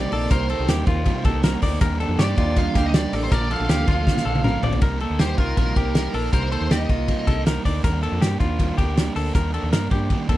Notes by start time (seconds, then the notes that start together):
Already playing: C3 G3 A#3 C4 D#4 G4 A#4 D5
0.12 A#1 A#3 D#4 A4 A#4, open hi-hat, ride
0.31 C2 C3 G3 A#3 D#4 A#4 C5, kick, hi-hat pedal, ride
0.49 A#3 D#4 A4 A#4, ride
0.59 C2
0.67 D#2 G3 A#3 D#4 G4 A#4, snare, ride
0.86 D#2 A#3 D#4 F4 A#4, kick, ride
1.04 C3 G3 A#3 D#4 A#4, kick, ride
1.24 C2 A#3 D#4 A4 A#4, kick, ride
1.43 G3 A#3 D#4 A#4, snare, ride
1.62 D2 A#3 D#4 A#4 D5, kick, open hi-hat, ride
1.80 D#2 D#3 G3 A#3 D4 D#4 G4 A#4, kick, hi-hat pedal, ride
2.00 A#3 D4 G4 A4, ride
2.09 F2
2.18 G2 G3 A#3 D4 G4 D5, snare, ride
2.36 D#2 A#3 D4 F4 G4, kick, ride
2.56 D#3 G3 A#3 D4 G4 F5, kick, ride
2.74 D2 A#3 D4 G4, kick, snare, ride
2.86 D#5
2.93 G3 A#3 D4 G4 D5, snare, ride
3.12 A1 A#3 D4 G4 A4, open hi-hat, ride
3.24 C5
3.31 A#1 A#2 D3 F3 A3 A#3 D4 F4 A4 A#4 D5, kick, hi-hat pedal, ride
3.50 F3 A#3 D4 A4 F5, ride
3.60 A#1
3.68 D2 F3 A#3 D4 G4 A4, snare, ride
3.87 D2 F3 A#3 D4 F4 A4, kick, ride
4.06 A#2 D3 F3 A#3 D4 A4, kick, snare
4.17 snare
4.24 A#1 F3 A#3 D4 A4
4.35 high tom
4.43 F3 A#3 D4 A4 A#4, mid tom
4.62 A#1 F3 A#3 D4 A4 D5, floor tom
4.73 floor tom
4.81 C2 C3 G3 A#3 D#4 A#4, kick, ride
5.00 A#3 D#4 A4 A#4, ride
5.10 D2
5.19 D#2 G3 A#3 D#4 G4 A#4 C5, snare, ride
5.38 C2 A#3 D#4 F4 A#4, kick, ride
5.57 A#1 C3 G3 A#3 D#4 A#4, kick, ride
5.76 C2 A#3 D#4 G4 A#4, kick, ride
5.94 G3 A#3 D#4 A#4, snare, ride
6.14 A#1 A#3 D#4 A4 A#4, open hi-hat, ride
6.32 C2 C3 G3 A#3 D#4 A#4 C5, kick, hi-hat pedal, ride
6.51 A#3 D#4 A4 A#4 C5, ride
6.61 D#2
6.70 D#2 G3 A#3 D#4 G4 A#4 D#5, snare, ride
6.89 C2 A#3 D#4 F4 A#4, kick, ride
7.08 C3 G3 A#3 D#4 A#4, kick, ride
7.27 C2 A#3 D#4 A4 A#4, kick, ride
7.45 G3 A#3 D#4 A#4, snare, ride
7.64 D2 A#3 D#4 A#4 D5, kick, open hi-hat, ride
7.83 D#2 D#3 G3 A#3 D4 A#4, kick, hi-hat pedal, ride
8.02 A#3 D4 A4 A#4, ride
8.12 F2
8.21 G2 G3 A#3 D4 G4 A#4, snare, ride
8.39 D#2 A#3 D4 F4 A#4, kick, ride
8.59 D#3 G3 A#3 D4 A#4, kick, ride
8.77 D2 A#3 D4 G4 A#4, kick, ride
8.96 G3 A#3 D4 A#4, snare, ride
9.15 D2 A#3 D4 A4 A#4, open hi-hat, ride
9.34 D#2 D#3 G3 A#3 D4 A#4, kick, hi-hat pedal, ride
9.53 A#3 D4 A4 A#4, ride
9.63 D#2
9.71 G2 G3 A#3 D4 A#4, snare, ride
9.90 G2 A#3 D4 G4 A#4, kick, ride
10.10 D#3 G3 A#3 D4 A#4, kick, ride
10.28 D#2 A#3 D4 A4 A#4, kick, ride